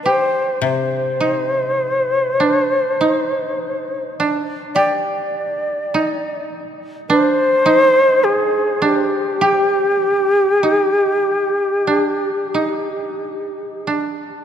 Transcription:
<<
  \new Staff \with { instrumentName = "Shakuhachi" } { \time 4/4 \tempo 4 = 51 c''8 c''2. r8 | d''4. r8 c''4 aes'8 g'8~ | g'2.~ g'8 r8 | }
  \new Staff \with { instrumentName = "Koto" } { \time 4/4 g'4 ees'4 d'8 ees'4 d'8 | g'4 ees'4 d'8 ees'4 d'8 | g'4 ees'4 d'8 ees'4 d'8 | }
  \new Staff \with { instrumentName = "Koto" } { \clef bass \time 4/4 r8 c2. r8 | r1 | r1 | }
>>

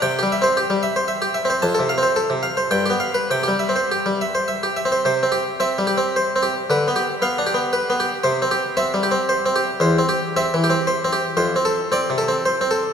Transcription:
\new Staff \with { instrumentName = "Harpsichord" } { \time 3/4 \key c \major \tempo 4 = 113 << { g''16 g'16 e''16 c''16 g'16 g16 e''16 c''16 e''16 g'16 e''16 c''16 | a''16 a'16 f''16 c''16 a'16 c16 f''16 c''16 g''16 g'16 f''16 b'16 | g''16 g'16 e''16 c''16 g'16 g16 e''16 c''16 e''16 g'16 e''16 c''16 | c''8 g'8 e''8 g'8 c''8 g'8 |
b'8 g'8 f''8 g'8 b'8 g'8 | c''8 g'8 e''8 g'8 c''8 g'8 | c''8 g'8 e''8 g'8 c''8 g'8 | c''8 a'8 d''8 a'8 c''8 a'8 | } \\ { \tuplet 3/2 { c8 g8 c'8 } r4 \tuplet 3/2 { r4 c'8 } | \tuplet 3/2 { f,8 c8 c'8 } r4 \tuplet 3/2 { g,8 b8 r8 } | \tuplet 3/2 { c8 g8 c'8 } r4 \tuplet 3/2 { r4 c'8 } | \tuplet 3/2 { c8 c'8 r8 c'8 g8 c'8 r8 c'8 r8 } |
\tuplet 3/2 { d8 b8 r8 b8 d'8 b8 r8 b8 r8 } | \tuplet 3/2 { c8 c'8 r8 c'8 g8 c'8 r8 c'8 r8 } | \tuplet 3/2 { e,8 c'8 r8 c'8 e8 c'8 r8 c'8 r8 } | \tuplet 3/2 { f,8 c'8 r8 c'8 c8 c'8 r8 c'8 r8 } | } >> }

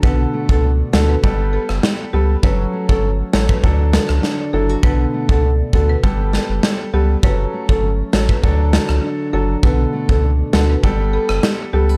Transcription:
<<
  \new Staff \with { instrumentName = "Marimba" } { \time 4/4 \key b \minor \tempo 4 = 100 b'16 r8 a'16 r8 a'16 b'16 r8 a'16 r8. g'16 r16 | b'16 r8 a'16 r8 a'16 b'16 r8 a'16 r8. a'16 r16 | b'16 r8 a'16 r8 a'16 b'16 r8 a'16 r8. g'16 r16 | b'16 r8 a'16 r8 a'16 b'16 r8 a'16 r8. a'16 r16 |
b'16 r8 a'16 r8 a'16 b'16 r8 a'16 r8. g'16 r16 | }
  \new Staff \with { instrumentName = "Nylon-string guitar" } { \time 4/4 \key b \minor b,8 a8 d'8 fis'8 g8 b'8 g'8 b'8 | fis8 a8 cis'8 fis'8 d8 fis'8 d'8 e'16 fis'16 | b,8 a8 d'8 fis'8 g8 b'8 g'8 b'8 | fis8 a8 cis'8 fis'8 d8 fis'8 d'8 fis'8 |
b,8 a8 d'8 fis'8 g8 b'8 g'8 a'16 b'16 | }
  \new Staff \with { instrumentName = "Grand piano" } { \time 4/4 \key b \minor <d b a'>8. <d b a'>16 r8 <d b a'>16 r16 <g b a'>4. <g b a'>16 r16 | <fis cis' a'>8. <fis cis' a'>16 r8 <fis cis' a'>16 r16 <fis d' a'>4. <fis d' a'>16 r16 | <d b a'>8. <d b a'>16 r8 <d b a'>16 r16 <g b a'>4. <g b a'>16 r16 | <fis cis' a'>8. <fis cis' a'>16 r8 <fis cis' a'>16 r16 <fis d' a'>4. <fis d' a'>16 r16 |
<d b a'>8. <d b a'>16 r8 <d b a'>16 r16 <g b a'>4. <g b a'>16 r16 | }
  \new Staff \with { instrumentName = "Sub bass" } { \clef bass \time 4/4 \key b \minor b,,8 r16 cis,8. d,8 g,,8. fis,,16 r8 cis,8 | fis,,8 r16 g,,8. a,,8 d,8. cis,16 r8 fis,,8 | b,,8 r16 cis,8. d,8 g,,8. fis,,16 r8 cis,8 | fis,,8 r16 g,,8. a,,8 d,8. cis,16 r8 fis,,8 |
b,,8 r16 cis,8. d,8 g,,8. fis,,16 r8 cis,8 | }
  \new DrumStaff \with { instrumentName = "Drums" } \drummode { \time 4/4 bd8. bd16 r8 sn8 bd8. ss16 sn4 | bd8. bd16 r8 sn16 bd16 bd8 sn16 ss16 sn4 | bd8. bd16 r8 bd8 bd8 sn8 sn4 | bd8. bd16 r8 sn16 bd16 bd8 sn16 ss16 r4 |
bd8. bd16 r8 sn8 bd8. ss16 sn4 | }
>>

